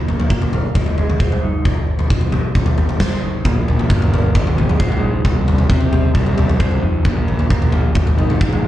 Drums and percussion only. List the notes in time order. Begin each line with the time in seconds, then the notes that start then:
0.08 floor tom
0.20 floor tom
0.30 kick
0.42 floor tom
0.53 floor tom
0.75 kick, floor tom
0.86 floor tom
0.98 floor tom
1.10 floor tom
1.20 kick
1.32 mid tom
1.65 kick, floor tom
1.99 floor tom
2.10 kick
2.21 floor tom
2.32 floor tom
2.55 kick, floor tom
2.66 floor tom
2.78 floor tom
2.89 floor tom
3.00 kick, snare, mid tom
3.45 kick, floor tom
3.68 floor tom
3.79 floor tom
3.90 kick
4.02 floor tom
4.14 floor tom
4.35 kick, floor tom
4.47 floor tom
4.58 floor tom
4.69 floor tom
4.80 kick
4.92 mid tom
5.25 kick, floor tom
5.48 floor tom
5.58 floor tom
5.70 kick
5.81 floor tom
5.93 floor tom
6.15 kick, floor tom
6.26 floor tom
6.38 floor tom
6.49 floor tom
6.60 kick
6.71 mid tom
7.05 kick, floor tom
7.28 floor tom
7.39 floor tom
7.50 kick
7.62 floor tom
7.72 floor tom
7.95 kick, floor tom
8.07 floor tom
8.18 floor tom
8.30 floor tom
8.41 kick
8.53 mid tom